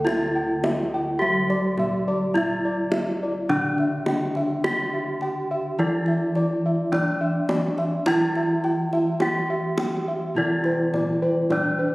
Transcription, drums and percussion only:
0, 0, Header, 1, 2, 480
1, 0, Start_track
1, 0, Tempo, 1143293
1, 1469, Time_signature, 4, 2, 24, 8
1, 5017, End_track
2, 0, Start_track
2, 0, Title_t, "Kendang"
2, 28, Note_on_c, 9, 62, 22
2, 28, Note_on_c, 9, 63, 51
2, 70, Note_off_c, 9, 62, 0
2, 70, Note_off_c, 9, 63, 0
2, 267, Note_on_c, 9, 62, 21
2, 267, Note_on_c, 9, 63, 60
2, 309, Note_off_c, 9, 62, 0
2, 309, Note_off_c, 9, 63, 0
2, 630, Note_on_c, 9, 62, 19
2, 672, Note_off_c, 9, 62, 0
2, 745, Note_on_c, 9, 62, 22
2, 745, Note_on_c, 9, 64, 59
2, 787, Note_off_c, 9, 62, 0
2, 787, Note_off_c, 9, 64, 0
2, 988, Note_on_c, 9, 62, 20
2, 988, Note_on_c, 9, 64, 52
2, 1030, Note_off_c, 9, 62, 0
2, 1030, Note_off_c, 9, 64, 0
2, 1225, Note_on_c, 9, 63, 50
2, 1267, Note_off_c, 9, 63, 0
2, 1467, Note_on_c, 9, 64, 67
2, 1509, Note_off_c, 9, 64, 0
2, 1588, Note_on_c, 9, 62, 18
2, 1630, Note_off_c, 9, 62, 0
2, 1706, Note_on_c, 9, 62, 20
2, 1706, Note_on_c, 9, 63, 49
2, 1748, Note_off_c, 9, 62, 0
2, 1748, Note_off_c, 9, 63, 0
2, 1827, Note_on_c, 9, 62, 22
2, 1869, Note_off_c, 9, 62, 0
2, 1949, Note_on_c, 9, 62, 20
2, 1949, Note_on_c, 9, 63, 57
2, 1991, Note_off_c, 9, 62, 0
2, 1991, Note_off_c, 9, 63, 0
2, 2187, Note_on_c, 9, 62, 23
2, 2229, Note_off_c, 9, 62, 0
2, 2544, Note_on_c, 9, 62, 19
2, 2586, Note_off_c, 9, 62, 0
2, 2667, Note_on_c, 9, 62, 21
2, 2709, Note_off_c, 9, 62, 0
2, 2908, Note_on_c, 9, 62, 25
2, 2908, Note_on_c, 9, 64, 57
2, 2950, Note_off_c, 9, 62, 0
2, 2950, Note_off_c, 9, 64, 0
2, 3144, Note_on_c, 9, 63, 58
2, 3186, Note_off_c, 9, 63, 0
2, 3265, Note_on_c, 9, 62, 21
2, 3307, Note_off_c, 9, 62, 0
2, 3384, Note_on_c, 9, 64, 74
2, 3426, Note_off_c, 9, 64, 0
2, 3508, Note_on_c, 9, 62, 22
2, 3549, Note_off_c, 9, 62, 0
2, 3627, Note_on_c, 9, 62, 24
2, 3669, Note_off_c, 9, 62, 0
2, 3748, Note_on_c, 9, 62, 24
2, 3790, Note_off_c, 9, 62, 0
2, 3863, Note_on_c, 9, 62, 20
2, 3863, Note_on_c, 9, 63, 55
2, 3905, Note_off_c, 9, 62, 0
2, 3905, Note_off_c, 9, 63, 0
2, 4104, Note_on_c, 9, 62, 23
2, 4104, Note_on_c, 9, 63, 58
2, 4146, Note_off_c, 9, 62, 0
2, 4146, Note_off_c, 9, 63, 0
2, 4467, Note_on_c, 9, 62, 20
2, 4509, Note_off_c, 9, 62, 0
2, 4592, Note_on_c, 9, 62, 19
2, 4592, Note_on_c, 9, 64, 57
2, 4634, Note_off_c, 9, 62, 0
2, 4634, Note_off_c, 9, 64, 0
2, 4830, Note_on_c, 9, 62, 21
2, 4830, Note_on_c, 9, 64, 57
2, 4872, Note_off_c, 9, 62, 0
2, 4872, Note_off_c, 9, 64, 0
2, 5017, End_track
0, 0, End_of_file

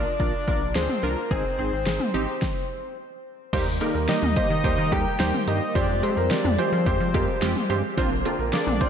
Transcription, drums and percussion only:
0, 0, Header, 1, 2, 480
1, 0, Start_track
1, 0, Tempo, 555556
1, 1131, Time_signature, 4, 2, 24, 8
1, 7684, End_track
2, 0, Start_track
2, 0, Title_t, "Drums"
2, 171, Note_on_c, 9, 36, 93
2, 257, Note_off_c, 9, 36, 0
2, 413, Note_on_c, 9, 36, 90
2, 499, Note_off_c, 9, 36, 0
2, 651, Note_on_c, 9, 38, 107
2, 738, Note_off_c, 9, 38, 0
2, 773, Note_on_c, 9, 47, 70
2, 859, Note_off_c, 9, 47, 0
2, 1131, Note_on_c, 9, 36, 105
2, 1217, Note_off_c, 9, 36, 0
2, 1611, Note_on_c, 9, 38, 101
2, 1697, Note_off_c, 9, 38, 0
2, 1729, Note_on_c, 9, 47, 82
2, 1815, Note_off_c, 9, 47, 0
2, 2091, Note_on_c, 9, 36, 103
2, 2091, Note_on_c, 9, 38, 91
2, 2177, Note_off_c, 9, 36, 0
2, 2178, Note_off_c, 9, 38, 0
2, 3051, Note_on_c, 9, 36, 112
2, 3051, Note_on_c, 9, 42, 74
2, 3051, Note_on_c, 9, 49, 102
2, 3137, Note_off_c, 9, 36, 0
2, 3137, Note_off_c, 9, 49, 0
2, 3138, Note_off_c, 9, 42, 0
2, 3292, Note_on_c, 9, 42, 84
2, 3292, Note_on_c, 9, 56, 71
2, 3378, Note_off_c, 9, 42, 0
2, 3378, Note_off_c, 9, 56, 0
2, 3531, Note_on_c, 9, 38, 110
2, 3531, Note_on_c, 9, 42, 76
2, 3617, Note_off_c, 9, 38, 0
2, 3618, Note_off_c, 9, 42, 0
2, 3648, Note_on_c, 9, 47, 87
2, 3734, Note_off_c, 9, 47, 0
2, 3768, Note_on_c, 9, 42, 78
2, 3771, Note_on_c, 9, 36, 104
2, 3855, Note_off_c, 9, 42, 0
2, 3858, Note_off_c, 9, 36, 0
2, 4010, Note_on_c, 9, 36, 98
2, 4011, Note_on_c, 9, 42, 74
2, 4097, Note_off_c, 9, 36, 0
2, 4098, Note_off_c, 9, 42, 0
2, 4252, Note_on_c, 9, 42, 65
2, 4252, Note_on_c, 9, 56, 71
2, 4253, Note_on_c, 9, 36, 97
2, 4338, Note_off_c, 9, 56, 0
2, 4339, Note_off_c, 9, 36, 0
2, 4339, Note_off_c, 9, 42, 0
2, 4491, Note_on_c, 9, 38, 110
2, 4492, Note_on_c, 9, 42, 82
2, 4577, Note_off_c, 9, 38, 0
2, 4579, Note_off_c, 9, 42, 0
2, 4612, Note_on_c, 9, 47, 75
2, 4699, Note_off_c, 9, 47, 0
2, 4731, Note_on_c, 9, 42, 89
2, 4818, Note_off_c, 9, 42, 0
2, 4971, Note_on_c, 9, 36, 110
2, 4971, Note_on_c, 9, 42, 72
2, 5057, Note_off_c, 9, 36, 0
2, 5058, Note_off_c, 9, 42, 0
2, 5212, Note_on_c, 9, 42, 81
2, 5212, Note_on_c, 9, 56, 71
2, 5298, Note_off_c, 9, 42, 0
2, 5298, Note_off_c, 9, 56, 0
2, 5451, Note_on_c, 9, 38, 111
2, 5451, Note_on_c, 9, 42, 75
2, 5537, Note_off_c, 9, 38, 0
2, 5537, Note_off_c, 9, 42, 0
2, 5568, Note_on_c, 9, 47, 90
2, 5655, Note_off_c, 9, 47, 0
2, 5689, Note_on_c, 9, 42, 77
2, 5775, Note_off_c, 9, 42, 0
2, 5931, Note_on_c, 9, 36, 99
2, 5931, Note_on_c, 9, 42, 73
2, 6017, Note_off_c, 9, 36, 0
2, 6018, Note_off_c, 9, 42, 0
2, 6171, Note_on_c, 9, 56, 70
2, 6172, Note_on_c, 9, 42, 66
2, 6173, Note_on_c, 9, 36, 96
2, 6258, Note_off_c, 9, 56, 0
2, 6259, Note_off_c, 9, 36, 0
2, 6259, Note_off_c, 9, 42, 0
2, 6411, Note_on_c, 9, 38, 110
2, 6412, Note_on_c, 9, 42, 83
2, 6498, Note_off_c, 9, 38, 0
2, 6499, Note_off_c, 9, 42, 0
2, 6532, Note_on_c, 9, 47, 78
2, 6619, Note_off_c, 9, 47, 0
2, 6651, Note_on_c, 9, 42, 95
2, 6738, Note_off_c, 9, 42, 0
2, 6891, Note_on_c, 9, 36, 111
2, 6891, Note_on_c, 9, 42, 74
2, 6977, Note_off_c, 9, 36, 0
2, 6978, Note_off_c, 9, 42, 0
2, 7132, Note_on_c, 9, 42, 84
2, 7132, Note_on_c, 9, 56, 73
2, 7218, Note_off_c, 9, 42, 0
2, 7218, Note_off_c, 9, 56, 0
2, 7371, Note_on_c, 9, 38, 111
2, 7371, Note_on_c, 9, 42, 77
2, 7457, Note_off_c, 9, 38, 0
2, 7458, Note_off_c, 9, 42, 0
2, 7488, Note_on_c, 9, 47, 89
2, 7575, Note_off_c, 9, 47, 0
2, 7609, Note_on_c, 9, 42, 77
2, 7611, Note_on_c, 9, 36, 102
2, 7684, Note_off_c, 9, 36, 0
2, 7684, Note_off_c, 9, 42, 0
2, 7684, End_track
0, 0, End_of_file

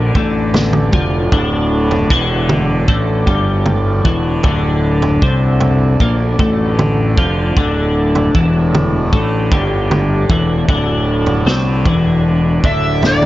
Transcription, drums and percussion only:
0, 0, Header, 1, 2, 480
1, 0, Start_track
1, 0, Tempo, 780234
1, 817, Time_signature, 4, 2, 24, 8
1, 8155, End_track
2, 0, Start_track
2, 0, Title_t, "Drums"
2, 93, Note_on_c, 9, 36, 98
2, 94, Note_on_c, 9, 43, 80
2, 155, Note_off_c, 9, 36, 0
2, 155, Note_off_c, 9, 43, 0
2, 332, Note_on_c, 9, 43, 81
2, 332, Note_on_c, 9, 47, 65
2, 340, Note_on_c, 9, 38, 74
2, 394, Note_off_c, 9, 43, 0
2, 394, Note_off_c, 9, 47, 0
2, 401, Note_off_c, 9, 38, 0
2, 449, Note_on_c, 9, 47, 74
2, 510, Note_off_c, 9, 47, 0
2, 569, Note_on_c, 9, 47, 71
2, 573, Note_on_c, 9, 36, 101
2, 630, Note_off_c, 9, 47, 0
2, 634, Note_off_c, 9, 36, 0
2, 813, Note_on_c, 9, 36, 97
2, 813, Note_on_c, 9, 43, 83
2, 874, Note_off_c, 9, 43, 0
2, 875, Note_off_c, 9, 36, 0
2, 1175, Note_on_c, 9, 43, 80
2, 1237, Note_off_c, 9, 43, 0
2, 1294, Note_on_c, 9, 36, 97
2, 1356, Note_off_c, 9, 36, 0
2, 1533, Note_on_c, 9, 43, 83
2, 1533, Note_on_c, 9, 47, 82
2, 1595, Note_off_c, 9, 43, 0
2, 1595, Note_off_c, 9, 47, 0
2, 1773, Note_on_c, 9, 36, 100
2, 1835, Note_off_c, 9, 36, 0
2, 2013, Note_on_c, 9, 36, 104
2, 2013, Note_on_c, 9, 43, 83
2, 2074, Note_off_c, 9, 36, 0
2, 2075, Note_off_c, 9, 43, 0
2, 2250, Note_on_c, 9, 43, 70
2, 2250, Note_on_c, 9, 47, 74
2, 2311, Note_off_c, 9, 43, 0
2, 2311, Note_off_c, 9, 47, 0
2, 2492, Note_on_c, 9, 36, 100
2, 2554, Note_off_c, 9, 36, 0
2, 2728, Note_on_c, 9, 43, 82
2, 2732, Note_on_c, 9, 36, 99
2, 2789, Note_off_c, 9, 43, 0
2, 2793, Note_off_c, 9, 36, 0
2, 3090, Note_on_c, 9, 43, 84
2, 3152, Note_off_c, 9, 43, 0
2, 3212, Note_on_c, 9, 36, 91
2, 3274, Note_off_c, 9, 36, 0
2, 3448, Note_on_c, 9, 43, 89
2, 3510, Note_off_c, 9, 43, 0
2, 3692, Note_on_c, 9, 36, 108
2, 3754, Note_off_c, 9, 36, 0
2, 3932, Note_on_c, 9, 36, 100
2, 3932, Note_on_c, 9, 43, 83
2, 3994, Note_off_c, 9, 36, 0
2, 3994, Note_off_c, 9, 43, 0
2, 4176, Note_on_c, 9, 43, 76
2, 4176, Note_on_c, 9, 47, 71
2, 4237, Note_off_c, 9, 43, 0
2, 4237, Note_off_c, 9, 47, 0
2, 4414, Note_on_c, 9, 36, 96
2, 4476, Note_off_c, 9, 36, 0
2, 4655, Note_on_c, 9, 36, 100
2, 4655, Note_on_c, 9, 43, 79
2, 4716, Note_off_c, 9, 36, 0
2, 4717, Note_off_c, 9, 43, 0
2, 5015, Note_on_c, 9, 43, 74
2, 5077, Note_off_c, 9, 43, 0
2, 5136, Note_on_c, 9, 36, 90
2, 5197, Note_off_c, 9, 36, 0
2, 5381, Note_on_c, 9, 43, 82
2, 5381, Note_on_c, 9, 47, 86
2, 5442, Note_off_c, 9, 43, 0
2, 5442, Note_off_c, 9, 47, 0
2, 5615, Note_on_c, 9, 36, 102
2, 5677, Note_off_c, 9, 36, 0
2, 5855, Note_on_c, 9, 36, 104
2, 5858, Note_on_c, 9, 43, 82
2, 5916, Note_off_c, 9, 36, 0
2, 5919, Note_off_c, 9, 43, 0
2, 6098, Note_on_c, 9, 43, 75
2, 6098, Note_on_c, 9, 47, 75
2, 6160, Note_off_c, 9, 43, 0
2, 6160, Note_off_c, 9, 47, 0
2, 6334, Note_on_c, 9, 36, 104
2, 6396, Note_off_c, 9, 36, 0
2, 6574, Note_on_c, 9, 36, 107
2, 6575, Note_on_c, 9, 43, 79
2, 6635, Note_off_c, 9, 36, 0
2, 6636, Note_off_c, 9, 43, 0
2, 6930, Note_on_c, 9, 43, 79
2, 6991, Note_off_c, 9, 43, 0
2, 7059, Note_on_c, 9, 38, 75
2, 7120, Note_off_c, 9, 38, 0
2, 7293, Note_on_c, 9, 36, 105
2, 7294, Note_on_c, 9, 43, 85
2, 7355, Note_off_c, 9, 36, 0
2, 7356, Note_off_c, 9, 43, 0
2, 7775, Note_on_c, 9, 36, 98
2, 7777, Note_on_c, 9, 43, 78
2, 7836, Note_off_c, 9, 36, 0
2, 7838, Note_off_c, 9, 43, 0
2, 8013, Note_on_c, 9, 43, 71
2, 8013, Note_on_c, 9, 47, 70
2, 8021, Note_on_c, 9, 38, 69
2, 8075, Note_off_c, 9, 43, 0
2, 8075, Note_off_c, 9, 47, 0
2, 8082, Note_off_c, 9, 38, 0
2, 8135, Note_on_c, 9, 47, 75
2, 8155, Note_off_c, 9, 47, 0
2, 8155, End_track
0, 0, End_of_file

